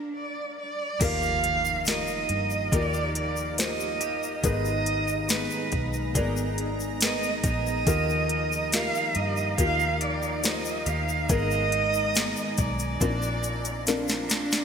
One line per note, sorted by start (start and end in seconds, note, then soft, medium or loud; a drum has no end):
0.00 0.15 D4 loud
0.16 0.55 D5 medium
0.59 1.03 D5 medium
1.00 2.04 D#2 loud
1.00 2.75 D#3 medium
1.00 2.26 D#3 medium
1.00 2.70 F3 medium
1.00 1.83 A#3 loud
1.00 2.72 A#3 medium
1.00 7.82 D#4 medium
1.00 1.83 D#4 medium
1.00 2.74 D#4 medium
1.00 1.83 F4 medium
1.00 4.40 G4 medium
1.00 1.83 G4 medium
1.00 1.83 A#4 loud
1.00 4.40 F5 medium
1.00 1.87 F5 loud
1.00 11.25 A#5 medium
1.00 kick loud
1.00 closed hi-hat medium
1.00 crash medium
1.00 impact medium
1.00 shaker medium
1.04 2.74 G4 medium
1.22 shaker soft
1.44 closed hi-hat medium
1.65 shaker medium
1.85 2.68 A#3 medium
1.85 2.68 D#4 medium
1.85 2.68 F4 medium
1.85 2.69 G4 medium
1.85 2.69 A#4 medium
1.85 2.75 D#5 loud
1.85 snare loud
1.85 closed hi-hat medium
1.85 shaker medium
2.07 shaker soft
2.29 2.69 G2 medium
2.29 closed hi-hat medium
2.50 shaker soft
2.72 4.40 D#2 loud
2.72 4.01 F3 medium
2.72 3.54 A#3 medium
2.72 4.03 A#3 medium
2.72 3.54 D#4 medium
2.72 4.02 D#4 medium
2.72 3.54 F4 medium
2.72 3.54 G4 medium
2.72 3.99 G4 medium
2.72 3.54 A#4 medium
2.72 3.15 D5 loud
2.72 kick medium
2.72 closed hi-hat medium
2.72 shaker medium
2.94 shaker soft
3.15 3.55 D5 medium
3.15 closed hi-hat medium
3.36 shaker soft
3.58 4.40 A#3 medium
3.58 4.40 D#4 medium
3.58 4.40 F4 medium
3.58 4.40 G4 medium
3.58 4.40 C5 medium
3.58 4.41 D#5 medium
3.58 snare loud
3.58 closed hi-hat loud
3.58 shaker medium
3.80 shaker medium
4.00 4.45 A#3 soft
4.00 4.45 D#4 soft
4.00 4.44 G4 medium
4.00 closed hi-hat medium
4.00 shaker soft
4.23 shaker medium
4.43 5.47 G#1 loud
4.43 6.15 G#2 medium
4.43 5.69 G#2 medium
4.43 7.85 D#3 medium
4.43 6.14 G#3 medium
4.43 7.83 B3 medium
4.43 5.25 B3 medium
4.43 6.15 B3 medium
4.43 5.25 D#4 medium
4.43 6.17 D#4 medium
4.43 7.83 G#4 medium
4.43 5.25 G#4 medium
4.43 5.26 A#4 medium
4.43 5.26 B4 loud
4.43 5.31 D#5 loud
4.43 kick loud
4.43 closed hi-hat medium
4.43 shaker medium
4.65 shaker soft
4.86 closed hi-hat medium
5.08 shaker medium
5.29 6.11 B3 medium
5.29 6.11 D#4 medium
5.29 6.11 G#4 medium
5.29 6.15 B4 medium
5.29 6.12 B4 medium
5.29 snare loud
5.29 closed hi-hat medium
5.29 shaker medium
5.50 shaker medium
5.72 6.16 B1 medium
5.72 kick medium
5.72 closed hi-hat medium
5.93 shaker soft
6.15 7.40 G#1 loud
6.15 7.44 G#3 medium
6.15 6.97 B3 medium
6.15 7.44 B3 medium
6.15 6.97 D#4 medium
6.15 7.44 D#4 medium
6.15 6.97 G#4 medium
6.15 6.97 A#4 medium
6.15 7.43 A#4 medium
6.15 6.97 D5 medium
6.15 kick medium
6.15 closed hi-hat medium
6.15 shaker medium
6.37 shaker soft
6.58 closed hi-hat medium
6.80 shaker soft
7.01 7.83 B3 medium
7.01 7.83 D#4 medium
7.01 7.83 G#4 medium
7.01 7.83 A#4 medium
7.01 7.83 B4 medium
7.01 7.41 D#5 loud
7.01 snare loud
7.01 closed hi-hat loud
7.01 shaker medium
7.23 shaker medium
7.44 7.84 A#1 medium
7.44 7.86 G#3 soft
7.44 7.88 B3 soft
7.44 7.87 D#4 medium
7.44 7.87 A#4 medium
7.44 8.74 D#5 loud
7.44 kick loud
7.44 closed hi-hat medium
7.44 shaker soft
7.67 shaker medium
7.85 8.90 D#2 loud
7.85 9.61 D#3 medium
7.85 9.12 D#3 medium
7.85 9.56 F3 medium
7.85 8.69 A#3 loud
7.85 9.58 A#3 medium
7.85 12.97 D#4 medium
7.85 8.69 D#4 medium
7.85 9.59 D#4 medium
7.85 8.69 F4 medium
7.85 11.26 G4 medium
7.85 8.69 G4 medium
7.85 8.69 A#4 loud
7.85 11.26 F5 medium
7.85 kick loud
7.85 closed hi-hat medium
7.85 shaker medium
7.90 9.60 G4 medium
8.09 shaker soft
8.29 closed hi-hat medium
8.52 shaker medium
8.72 9.54 A#3 medium
8.72 9.54 D#4 medium
8.72 9.55 F4 medium
8.72 9.55 G4 medium
8.72 9.55 A#4 medium
8.72 9.17 F5 loud
8.72 snare loud
8.72 closed hi-hat medium
8.72 shaker medium
8.95 shaker soft
9.15 9.55 G2 loud
9.15 9.57 D#5 loud
9.15 closed hi-hat medium
9.37 shaker soft
9.57 10.83 D#2 loud
9.57 10.87 F3 medium
9.57 10.40 A#3 medium
9.57 10.89 A#3 medium
9.57 10.40 D#4 medium
9.57 10.88 D#4 medium
9.57 10.40 F4 medium
9.57 10.40 G4 medium
9.57 10.85 G4 medium
9.57 10.40 A#4 medium
9.57 10.02 F5 loud
9.57 kick medium
9.57 closed hi-hat medium
9.57 shaker medium
9.80 shaker soft
10.01 10.45 D5 loud
10.01 closed hi-hat medium
10.22 shaker soft
10.44 11.25 A#3 medium
10.44 11.25 D#4 medium
10.44 11.26 F4 medium
10.44 11.26 G4 medium
10.44 11.26 C5 medium
10.44 10.88 D#5 medium
10.44 snare loud
10.44 closed hi-hat loud
10.44 shaker medium
10.65 shaker medium
10.86 11.27 D#2 loud
10.86 11.31 A#3 soft
10.86 11.30 D#4 soft
10.86 11.29 G4 medium
10.86 11.30 F5 medium
10.86 closed hi-hat medium
10.86 shaker soft
11.09 shaker medium
11.29 12.33 G#1 loud
11.29 13.01 G#2 medium
11.29 12.54 G#2 medium
11.29 13.01 D#3 medium
11.29 13.00 G#3 medium
11.29 12.11 A#3 loud
11.29 12.11 B3 medium
11.29 13.01 B3 medium
11.29 12.11 D#4 medium
11.29 12.11 G#4 loud
11.29 12.11 A#4 loud
11.29 12.59 D#5 loud
11.29 13.00 G#5 medium
11.29 14.64 A#5 medium
11.29 kick loud
11.29 closed hi-hat medium
11.29 shaker medium
11.33 13.02 D#4 medium
11.33 13.03 A#4 medium
11.51 shaker soft
11.72 closed hi-hat medium
11.94 shaker medium
12.15 12.97 A#3 medium
12.15 12.97 B3 medium
12.15 12.97 D#4 medium
12.15 12.97 G#4 medium
12.15 12.97 A#4 medium
12.15 snare loud
12.15 closed hi-hat medium
12.15 shaker medium
12.36 shaker medium
12.57 12.98 B1 medium
12.57 13.87 D5 medium
12.57 kick medium
12.57 closed hi-hat medium
12.57 shaker medium
12.79 closed hi-hat medium
12.79 shaker soft
13.00 14.64 A#1 loud
13.00 14.26 A#2 medium
13.00 14.32 F3 medium
13.00 13.83 A#3 medium
13.00 13.83 C4 medium
13.00 14.30 C4 medium
13.00 13.08 C#4 medium
13.00 14.29 D4 medium
13.00 13.83 F4 medium
13.00 13.83 A#4 medium
13.00 14.29 A#4 medium
13.00 14.64 D5 medium
13.00 14.64 F5 medium
13.00 14.64 C6 medium
13.00 kick medium
13.00 closed hi-hat medium
13.00 shaker medium
13.22 shaker soft
13.43 closed hi-hat medium
13.43 shaker medium
13.65 closed hi-hat medium
13.65 shaker soft
13.87 14.64 A#3 medium
13.87 14.64 C4 medium
13.87 14.64 D4 medium
13.87 14.27 D4 medium
13.87 14.64 F4 medium
13.87 14.64 A#4 medium
13.87 snare medium
13.87 closed hi-hat loud
13.87 shaker medium
14.08 snare medium
14.08 shaker medium
14.29 14.64 F3 soft
14.29 14.64 C4 medium
14.29 14.64 D4 medium
14.29 14.64 D4 loud
14.29 14.64 A#4 medium
14.29 snare loud
14.29 closed hi-hat medium
14.29 shaker medium
14.51 snare loud
14.51 shaker medium